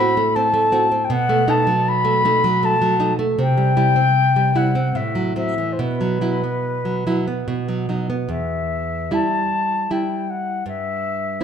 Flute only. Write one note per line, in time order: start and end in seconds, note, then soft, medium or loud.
0.00 0.36 B5 loud
0.35 1.05 A5 loud
1.04 1.13 G5 medium
1.11 1.51 F#5 loud
1.49 1.89 A5 loud
1.88 2.66 B5 loud
2.64 3.13 A5 loud
3.40 4.58 G5 loud
4.56 4.97 F#5 medium
4.95 5.36 E5 medium
5.37 5.74 E5 medium
5.72 5.81 C5 soft
5.80 7.89 B4 medium
8.29 9.14 E5 medium
9.13 9.93 A5 medium
9.91 10.31 G5 medium
10.29 10.67 F#5 medium
10.67 11.43 E5 medium